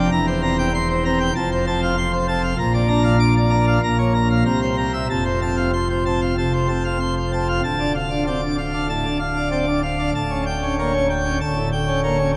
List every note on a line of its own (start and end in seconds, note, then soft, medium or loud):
0.12 1.31 E1 medium
0.12 1.31 E2 medium
0.12 0.26 A#5 medium
0.27 0.41 C5 medium
0.42 0.70 C4 medium
0.42 0.56 A#5 medium
0.58 0.72 G5 medium
0.74 0.88 C6 medium
0.90 1.03 C5 medium
1.05 1.31 C4 medium
1.05 1.19 A#5 medium
1.20 1.33 G5 medium
1.36 2.55 F1 medium
1.36 2.55 F2 medium
1.36 1.49 A5 medium
1.52 1.65 C5 medium
1.67 1.94 C4 medium
1.67 1.80 A5 medium
1.83 1.96 F5 medium
1.98 2.11 C6 loud
2.13 2.26 C5 medium
2.28 2.54 C4 medium
2.28 2.42 A5 medium
2.44 2.57 F5 medium
2.59 3.79 A#1 medium
2.59 3.79 A#2 medium
2.59 2.73 A#5 medium
2.74 2.88 D5 medium
2.88 3.16 D4 medium
2.88 3.03 A#5 medium
3.04 3.18 F5 medium
3.20 3.34 D6 medium
3.37 3.50 D5 medium
3.51 3.78 D4 medium
3.51 3.65 A#5 medium
3.67 3.80 F5 medium
3.83 4.44 A#1 medium
3.83 4.44 A#2 medium
3.83 3.97 A#5 medium
3.99 4.12 C#5 medium
4.14 4.28 A#5 medium
4.30 4.43 F5 medium
4.46 5.07 C2 medium
4.46 5.07 C3 medium
4.46 4.60 A#5 medium
4.62 4.76 C5 medium
4.78 4.92 A#5 medium
4.93 5.07 E5 medium
5.09 7.61 F1 medium
5.09 7.61 F2 medium
5.09 5.24 A5 medium
5.25 5.40 C5 soft
5.42 5.70 C4 soft
5.42 5.56 A5 medium
5.57 5.71 F5 soft
5.73 5.88 C6 medium
5.90 6.04 C5 medium
6.06 6.34 C4 medium
6.06 6.20 A5 medium
6.22 6.36 F5 soft
6.38 6.66 C3 soft
6.38 6.52 A5 medium
6.53 6.67 C5 soft
6.69 6.97 C4 soft
6.69 6.83 A5 soft
6.85 6.99 F5 medium
7.00 7.14 C6 medium
7.17 7.31 C5 soft
7.32 7.59 C4 soft
7.32 7.47 A5 medium
7.49 7.62 F5 medium
7.64 10.11 D1 medium
7.64 10.11 D2 medium
7.64 7.92 A5 medium
7.80 7.94 D4 medium
7.95 8.24 F5 medium
8.11 8.25 D4 medium
8.27 8.40 C4 soft
8.27 8.55 D5 medium
8.42 8.57 D4 soft
8.58 8.86 F5 soft
8.73 8.88 D4 medium
8.89 9.04 A2 medium
8.89 9.17 A5 medium
9.05 9.19 D4 soft
9.20 9.48 F5 medium
9.37 9.51 D4 medium
9.51 9.65 C4 medium
9.51 9.80 D5 medium
9.67 9.82 D4 medium
9.83 10.10 F5 medium
9.99 10.13 D4 medium
10.15 11.39 D1 medium
10.15 11.39 D2 medium
10.15 10.43 A5 medium
10.31 10.45 C#4 medium
10.46 10.74 G5 medium
10.63 10.77 C#4 soft
10.79 10.92 A#3 soft
10.79 11.06 C#5 medium
10.94 11.08 C#4 medium
11.10 11.38 G5 medium
11.25 11.39 C#4 medium
11.41 12.37 D1 medium
11.41 12.37 D2 medium
11.41 11.69 A5 medium
11.56 11.70 A2 soft
11.72 12.00 G5 medium
11.88 12.02 C#4 medium
12.04 12.17 A#3 medium
12.04 12.31 C#5 medium
12.19 12.33 C#4 medium